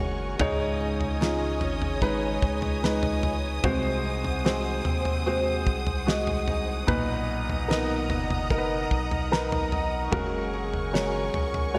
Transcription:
Already playing: F#1 F#3 G#3 C#4 F#4 G#4 A#4 C#5 F#5 G#5 C#6
0.00 F#4
0.39 C#2 G#2 C#3 G#3 D#4 C#5 D#5 D#6, kick, floor tom
0.80 D#4
1.01 floor tom
1.21 G#3 C#4 D#4 F4 G#4, snare
1.61 G#1 C#4, floor tom
1.82 floor tom
2.01 G#3 C#4 D#4 G#4 B4, kick
2.42 C#2, kick
2.62 floor tom
2.83 G#3 D#4 B4, snare
3.03 floor tom
3.23 D#4, floor tom
3.63 C2 C3 G#3 F#4 C5 F#5, kick, floor tom
4.04 D#4
4.24 floor tom
4.44 G#3 C4 D#4 F#4 G#4 C5, snare
4.85 D#2 C4, floor tom
5.05 floor tom
5.26 G#3 C4 D#4 F#4 G#4 C5
5.67 C2, kick
5.87 floor tom
6.06 G#3 F#4 D#5, snare
6.27 floor tom
6.48 D#4, floor tom
6.87 B1 A#2 B2 D#4 B4 D#5 A#5, kick, floor tom
7.29 D#4
7.49 floor tom
7.68 B3 D#4 A#4 B4, snare
8.10 F#1 B3, floor tom
8.30 floor tom
8.50 B3 D#4 A#4, kick
8.58 B4
8.91 B1, kick
9.11 floor tom
9.32 D#4 A#4 B4 A#5, snare
9.52 floor tom
9.72 D#4 D#5, floor tom
10.11 F#1 C#3 F#3 G#3 F#4 A#4 G#5 C#6, kick, floor tom
10.53 G#4
10.73 floor tom
10.93 G#3 C#4 F#4 G#4 A#4 C#5, snare
11.34 C#2 C#4, floor tom
11.54 floor tom
11.74 G#3 C#4 F#4 C#5

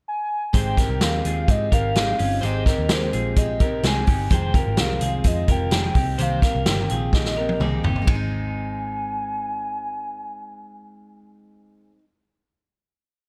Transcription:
0.08 G#5
0.53 G#1 G#3 C4 D#4 G4 G#4 C5 G5, kick, closed hi-hat
0.76 C4 D#4 G4 A#4, kick, snare, closed hi-hat
0.89 C2
1.01 D#2 G#3 C4 D#4 G4 F5, snare, closed hi-hat
1.25 D#2 F4 G#4, closed hi-hat
1.48 G#2 G#3 C4 D#4 G4 D#5, kick, closed hi-hat
1.72 G#1 C4 D#4 G4 A#4 F5, kick, closed hi-hat
1.95 G#3 C4 D#4 G4 G#4, snare, closed hi-hat
2.18 G1 C4 C#4 D#4 F4 G4, open hi-hat
2.41 G#1 G#3 C4 D#4 G4 G#4 C5 D#5, closed hi-hat
2.66 C4 D#4 G4 A#4, kick, snare, closed hi-hat
2.78 D#2
2.89 D#2 G#3 C4 D#4 G4 C5, snare, closed hi-hat
3.13 A#1 F4 G#4, closed hi-hat
3.36 G#3 C4 D#4 G4 D#5, kick, closed hi-hat
3.60 C4 D#4 G4 A#4, kick, closed hi-hat
3.83 C2 G#3 C4 D#4 G4 G#4 G#5, snare, closed hi-hat
4.07 G1 C4 D#4 G4, kick, open hi-hat
4.30 F1 F2 C3 D#3 G#3 C4 F4 G#4 C5, kick, closed hi-hat
4.34 G5
4.53 D#3 G#3 C4 F4 G4 A#4, kick, closed hi-hat
4.67 G#1
4.77 C2 F2 C3 D#3 G#3 C4 F4 F5, snare, closed hi-hat
5.01 C2 F4 G#4, closed hi-hat
5.24 F2 D#3 G#3 C4 F4 D#5, kick, closed hi-hat
5.48 F1 D#3 G#3 C4 F4 G4 A#4 G5, kick, closed hi-hat
5.71 F2 C3 D#3 G#3 C4 F4 G#4, snare, closed hi-hat
5.95 C2 A#3 C4 D#4 G4, kick, open hi-hat
6.18 C2 C3 D#3 A#3 C4 G4 C5 F5, closed hi-hat
6.42 A#3 C4 G4 A#4, kick, snare, closed hi-hat
6.55 C2
6.66 G1 C3 D#3 A#3 C4 G4 G5, snare, closed hi-hat
6.90 A#1 F4 G#4, closed hi-hat
7.13 D#3 A#3 C4 G4 D#5, kick, snare
7.25 snare
7.37 A#3 C4 G4 A#4
7.49 high tom
7.60 C2 C3 D#3 A#3 C4 D#4 G4 G#4, mid tom
7.83 G1 A#3 C4 D#4 G4, floor tom
7.96 floor tom
8.02 G#3
8.07 G#1 C4 D#4 G#5, kick, ride bell
8.15 D#4

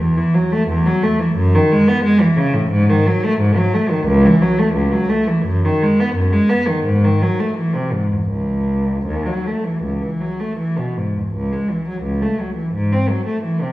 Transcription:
0.00 E2
0.17 E3
0.34 F#3
0.52 A3
0.69 E2
0.86 F#3
1.03 A3
1.20 E3
1.36 F#2
1.55 D#3
1.71 G#3
1.88 B3
2.04 G#3
2.21 E3
2.37 C#3
2.54 A2
2.71 G#2
2.89 D#3
3.07 F#3
3.24 A3
3.40 G#2
3.57 F#3
3.74 A3
3.90 D#3
4.07 C#2
4.25 E3
4.42 F#3
4.59 A3
4.74 C#2
4.92 F#3
5.09 A3
5.27 E3
5.46 F#2
5.65 D#3
5.82 G#3
6.00 B3
6.15 F#2
6.33 G#3
6.49 B3
6.68 D#3
6.86 G#2
7.04 D#3
7.22 F#3
7.40 A3
7.57 E3
7.75 C3
7.93 G#2
8.12 E2
8.30 C#2
9.06 D#2
9.26 F#3
9.47 A3
9.64 E3
9.84 C#2
10.02 E3
10.21 F#3
10.40 A3
10.58 E3
10.79 B2
10.98 G#2
11.16 E2
11.34 C#2
11.53 G#3
11.71 E3
11.88 F#3
12.04 C#2
12.22 A3
12.40 F#3
12.56 E3
12.74 G#2
12.93 C4
13.10 F#3
13.27 A3
13.43 E3
13.62 C3

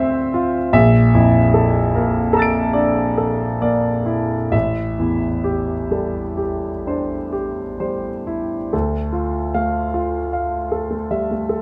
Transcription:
Already playing: D2 C4 C5 D5 E5
0.34 F4
0.73 A#1 E5
1.15 F2 E4
1.54 A4
1.95 A#3 A#4
2.33 A4 A#5 E6
2.39 A6 D7
2.73 D4 D5
3.18 A4
3.61 A#3 D5
4.06 E4
4.52 A1 E5
4.99 E2 E4
5.44 G4
5.91 G3 A4
6.37 G4
6.87 D4 C5
7.32 G4
7.80 G3 C5
8.27 E4
8.73 D2 A4
9.12 F4
9.54 A3 F5
9.94 F4
10.33 F5
10.72 A4
10.91 A3
11.11 G3 E5
11.31 A3
11.49 A4

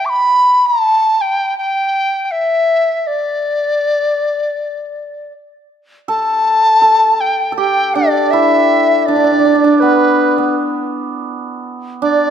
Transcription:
0.06 B5 D6
0.66 A5
1.21 G5
1.58 G5
2.25 G5
2.31 E5
3.07 D5
6.08 A4 A5
6.82 A4
7.21 G5
7.52 A4
7.57 G4 G5
7.95 D4 D5
8.31 E4 E5
9.02 D5 E5
9.08 D4
9.16 D4
9.24 D4
9.32 D4
9.39 D4
9.45 D4
9.55 D4
9.64 D4
9.80 B3 B4
10.38 B3
12.02 D4 D5

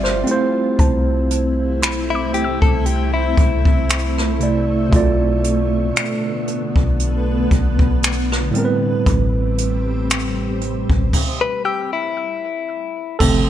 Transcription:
Already playing: G1 G3 C4 F4 A4 D5 E5
0.04 C5, cross-stick
0.24 A3 C4 E4, closed hi-hat
0.29 E4 C5
0.79 C2 A5, kick, closed hi-hat
1.31 closed hi-hat
1.82 B1 B5, finger snap, closed hi-hat
2.10 E4
2.15 D6
2.23 C2
2.34 G4, closed hi-hat
2.44 E6
2.62 C2 A4, kick
2.86 G4, closed hi-hat
3.14 E4
3.37 C2, kick, closed hi-hat
3.65 C2, kick
3.89 finger snap, closed hi-hat
4.18 cross-stick
4.39 C3 A3 E4 D5, closed hi-hat
4.89 B1 B2 D3 A3 B3, kick, closed hi-hat
4.94 F4 D5
5.44 closed hi-hat
5.96 finger snap, closed hi-hat
6.48 closed hi-hat
6.76 B1, kick
7.00 closed hi-hat
7.51 B1, kick, closed hi-hat
7.79 B1, kick
8.03 finger snap, closed hi-hat
8.32 cross-stick
8.51 A2 G3 C4, closed hi-hat
8.56 C4 A#4
8.65 B4
9.06 A1, kick, closed hi-hat
9.58 closed hi-hat
10.10 finger snap, closed hi-hat
10.61 closed hi-hat
10.90 A1, kick
11.13 kick, crash
11.41 B4
11.65 G4 E6
11.93 E4
13.19 G1 C3 F3 A3 C4 A4, kick, crash

